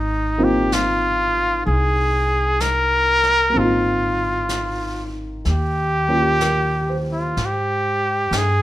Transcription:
Already playing: G#1 D#4
0.38 A#3 C4 D#4 F4
0.44 G4
0.72 F4, brush sweep, snare, hi-hat pedal
1.66 C2 G#4, brush sweep
2.60 A#4, brush sweep, snare, hi-hat pedal
3.23 snare
3.50 A#3 C4
3.54 G#1 D#4 F4, brush sweep
3.61 F4
4.49 brush sweep, snare, hi-hat pedal
5.45 D#2, brush sweep, snare
5.50 G4
6.08 A#3 C#4 F4 G4
6.40 A#4, brush sweep, snare, hi-hat pedal
6.89 C5
7.12 F4
7.37 G#2, brush sweep, snare
7.45 G4
8.31 G2, snare, hi-hat pedal
8.38 G#4

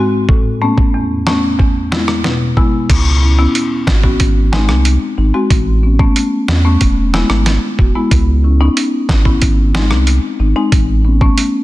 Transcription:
Already playing: G#2
0.29 A2, kick
0.62 A3 B3 C#4
0.78 kick
0.94 E2
1.27 A3 B3 C#4, snare
1.59 E2, kick
1.92 G#3 B3 E4, snare
2.08 cross-stick
2.24 B2, snare
2.57 G#3 B3 E4, kick
2.90 C#2, kick, closed hi-hat, crash
3.22 C#4 E4
3.39 B3 C#4 E4
3.55 closed hi-hat
3.87 G#1 C#4 F#4, kick, snare
4.04 B3 C#4 F#4, kick
4.20 G#1, kick, closed hi-hat
4.53 G#3 C4 D#4, snare
4.69 C2, cross-stick
4.85 closed hi-hat
5.18 G#1 C4 D#4
5.34 G#3 C4 F#4
5.50 A1, kick, closed hi-hat
5.83 B3 C#4
5.99 A3 B3 C#4, kick
6.16 closed hi-hat
6.48 E2, snare
6.65 A3 B3 C#4
6.81 E1, kick, closed hi-hat
7.14 G#3 B3 E4, snare
7.30 G#1, cross-stick
7.46 snare, closed hi-hat
7.79 E1 B3 F#4, kick
7.95 G#3 B3 E4
8.11 C#2, kick, closed hi-hat
8.44 C#4 E4
8.61 B3 C#4 D#4
8.77 closed hi-hat
9.09 G#1, kick, snare
9.25 B3 C#4 E4, kick
9.42 G#1, kick, closed hi-hat
9.74 G#3 C4 D#4, snare
9.91 C2, cross-stick
10.07 closed hi-hat
10.39 G#1 C4 D#4
10.56 G#3 C4 D#4
10.72 A1, kick, closed hi-hat
11.05 B3 C#4
11.21 A3 B3 C#4, kick
11.38 closed hi-hat

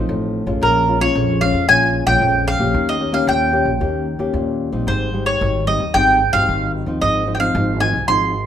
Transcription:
Already playing: F3 C4 D#4
0.09 A1 A2
0.46 A1 G#3 C#4 F4
0.61 A#1 A#2 A#4
0.88 G#3 C#4 F4
1.00 G#3 C#4 F4 C#5
1.15 A#1 F2
1.41 G#3 C#4 F4 F5
1.54 F2
1.68 A#1 A#2 G#3 C#4 F4 G#5
2.06 A#1 G#3 C#4 F4 G5
2.21 A#1 F2
2.48 F5
2.59 A#1 A#3 C#4 G4
2.74 D#2 D#3
2.89 D#5
3.00 A#3 C#4 G4
3.12 A#3 C#4 G4 F5
3.27 D#2 A#2 G5
3.53 A#3 C#4 G4
3.65 A#1
3.80 D#2 D#3 A#3 C#4 G4
4.19 D#2 A#3 C#4 G4
4.34 D#2 A#2
4.72 A#1 G3 C4 D#4
4.87 G#1 G#2 C5
5.13 G3 D#4
5.26 C#5
5.41 G#1 D#3
5.67 G3 C4 D#4 D#5
5.80 D#2
5.94 G#1 G#2 G3 C4 D#4 G5
6.33 G#1 G3 C4 D#4 F5
6.48 G#1 D#3
6.86 D#2 F3 C4 D#4
7.01 G#1 G#2 D#5
7.27 F3 C4 D#4
7.35 G5
7.39 F3 C4 D#4 F5
7.54 G#1 G#2
7.80 F3 C4 D#4 G#5
7.93 C2
8.08 G#1 G#2 F3 C4 D#4 C6

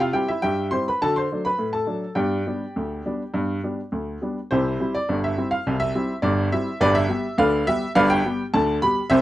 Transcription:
Already playing: C3
0.00 F4 F5
0.13 G3 C4 E4 G4 G5
0.28 E4 E5
0.42 G2 G4 E5 G5
0.71 G3 C4 E4 C5 C6
0.88 B4 B5
1.02 D3 F#4 A4 A5
1.16 C5 C6
1.32 F#3 A3 D4
1.45 B4 B5
1.59 A2
1.73 A4 A5
1.87 F#3 A3 D4
2.15 G2 B3 G4 D5 G5
2.47 G3 B3 D4
2.76 D2
3.06 G3 B3 D4
3.34 G2 B3
3.64 G3 B3 D4
3.92 D2
4.22 G3 B3 D4
4.51 C2 C3 E4 G4 C5
4.80 G3 C4 E4
4.95 D5
5.09 G1 G2
5.24 E5
5.37 G3 C4 E4
5.51 F5
5.67 C2 C3
5.80 E5
5.95 G3 C4 E4
6.22 G1 G2 D5
6.52 G3 C4 E4 E5
6.80 G1 G2 G4 B4 D5
6.95 E5
7.09 G3 B3 G4
7.38 D2 D3 B4 D5 F5
7.67 G3 B3 G4 E5
7.95 G1 G2 B4 D5 F5
8.10 G5
8.26 G3 B3 G4
8.54 D2 D3 A5
8.82 G3 B3 G4 B5
9.10 C2 C3 G4 C5 E5

